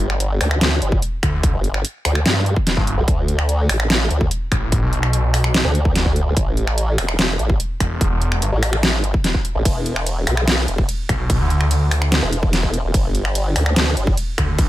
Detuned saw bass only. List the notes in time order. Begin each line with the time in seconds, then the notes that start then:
1.23 D2
2.77 G1
4.52 A1
4.82 B1
7.80 E1
8.11 E1
8.42 G1
11.09 B1
11.40 D2
14.38 D2